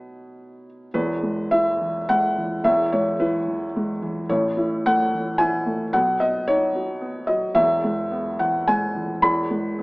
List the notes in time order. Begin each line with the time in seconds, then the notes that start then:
Already playing: B2 F#3 B3 D#4 B4
0.94 E1 E2 B4
1.23 G#3
1.51 E4 E5
1.81 E3
2.09 G#3 F#5
2.38 E3
2.64 E1 E2 E5
2.92 G#3 C#5
3.20 E4 B4
3.48 E3
3.76 G#3
4.02 E3
4.29 A1 A2 C#5
4.57 E4
4.86 A3 F#5
5.13 E3
5.38 E4 G#5
5.66 A3
5.93 B1 B2 F#5
6.20 B3 D#5
6.48 D#4 C#5
6.75 F#3
7.02 B3
7.27 F#3 D#5
7.54 E1 E2 E5
7.84 G#3
8.11 B3
8.39 E3 F#5
8.68 G#3 G#5
8.96 E3
9.22 E1 E2 B5
9.50 G#3
9.79 B3